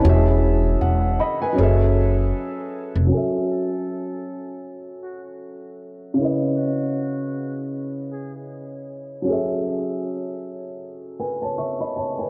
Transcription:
Already playing: upright piano C#5 A5
0.00 upright piano E3 C#4
0.04 upright bass E1, upright piano F#4 G4
0.09 upright piano E5
0.14 upright piano G#4
0.81 upright bass E1, upright piano F#5
1.19 upright piano D#5 B5
1.42 upright piano B4 G#5
1.53 upright piano F#3 C#4
1.58 upright bass F#1, upright piano G#4 A4
1.63 upright piano E5
2.96 upright bass F1
3.07 upright piano F#3 C#4
3.12 upright piano A4 G#5
3.17 upright piano E5
3.52 muted trumpet A4
5.04 muted trumpet F#4
6.14 upright piano C#3 C#4
6.19 upright piano E4 B4
6.24 upright piano D#5
6.57 muted trumpet F#4
8.13 muted trumpet G#4
9.22 upright piano F#3 C#4
9.27 upright piano G#4 A4
9.32 upright piano E5
11.20 upright piano B4 G#5
11.42 upright piano C#5 A5
11.58 upright piano E5 C#6
11.80 upright piano D#5 B5
11.96 upright piano C#5 A5
12.19 upright piano B4 G#5

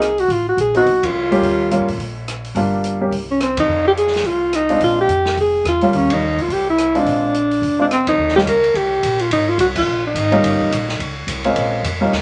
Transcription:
Already playing: upright bass C2, alto saxophone G#4
0.02 cross-stick, closed hi-hat
0.18 alto saxophone F#4, open hi-hat
0.28 upright bass A1, open hi-hat
0.32 alto saxophone F4
0.49 alto saxophone F#4
0.57 upright bass A#1, alto saxophone G#4, closed hi-hat
0.74 grand piano F#3 B3 C4 D#4, alto saxophone F#4, open hi-hat
0.85 upright bass C2, open hi-hat
1.03 alto saxophone F4, kick, ride
1.31 grand piano G3 A#3 C#4 G4, open hi-hat
1.42 upright bass D#2, open hi-hat
1.71 grand piano G3 A#3 C#4 F4, closed hi-hat
1.79 upright bass G2
1.88 upright bass A#2, open hi-hat
1.98 upright bass A#1, open hi-hat
2.28 cross-stick, closed hi-hat
2.44 open hi-hat
2.55 upright bass G1, grand piano G3 A#3 D4 F4, open hi-hat
2.84 closed hi-hat
3.01 grand piano G3 A#3 C#4 G4
3.11 upright bass C2, open hi-hat
3.31 alto saxophone C#4
3.40 alto saxophone C4, cross-stick, closed hi-hat
3.57 upright bass C3, alto saxophone D#4, kick, ride
3.68 upright bass F2
3.88 alto saxophone G4
3.97 alto saxophone G#4, closed hi-hat
4.07 snare
4.13 snare, open hi-hat
4.23 upright bass C2, alto saxophone F4, open hi-hat
4.53 alto saxophone D#4, cross-stick, closed hi-hat
4.69 grand piano G#3 C4 D4 F4, open hi-hat
4.80 upright bass A#1, alto saxophone F4, open hi-hat
5.01 alto saxophone G4
5.08 upright bass F2, closed hi-hat
5.25 snare
5.37 upright bass F1, alto saxophone G#4, open hi-hat
5.64 upright bass E2, cross-stick, closed hi-hat
5.68 alto saxophone F4
5.81 grand piano G3 A#3 C#4 F4, open hi-hat
5.93 upright bass D#2, alto saxophone C#4, open hi-hat
6.10 alto saxophone D#4, kick, ride
6.37 upright bass C#2, open hi-hat
6.42 alto saxophone F4
6.48 upright bass C2, open hi-hat
6.53 alto saxophone G4
6.70 alto saxophone E4
6.78 cross-stick, closed hi-hat
6.94 grand piano G#3 C4 D4 F4, open hi-hat
6.99 alto saxophone D4
7.05 upright bass A#1, open hi-hat
7.34 closed hi-hat
7.51 open hi-hat
7.62 upright bass F1, open hi-hat
7.79 grand piano G#3 C4 D4 F4, alto saxophone D4
7.91 alto saxophone C4, cross-stick, closed hi-hat
8.07 alto saxophone D#4, kick, ride
8.18 upright bass D#2
8.28 snare
8.36 grand piano G3 A#3 C#4 D#4 F4, alto saxophone G4, snare
8.46 upright bass C#2, alto saxophone A#4, hi-hat pedal, ride
8.64 ride
8.74 upright bass C2, alto saxophone G4, ride
9.03 upright bass A#1, hi-hat pedal, ride
9.19 alto saxophone F4, ride
9.31 upright bass G#1, alto saxophone D#4, ride
9.49 alto saxophone F4
9.58 upright bass C2, alto saxophone F#4, hi-hat pedal, ride
9.76 alto saxophone F4, kick, crash
10.07 alto saxophone D#4
10.14 upright bass G#1, hi-hat pedal, ride
10.31 grand piano G3 A#3 C#4 D#4 F4, ride
10.43 upright bass G1, ride
10.60 muted upright bass stroke, kick
10.71 upright bass A#1, hi-hat pedal, ride
10.89 snare
10.99 upright bass C#2, ride
11.27 upright bass C2, hi-hat pedal, ride
11.44 grand piano G#3 A#3 C4 C#4 F4, ride
11.55 upright bass A#1, ride
11.83 upright bass F2, hi-hat pedal, ride
12.01 grand piano G3 A#3 C#4 D#4 F4
12.12 upright bass D#2, snare

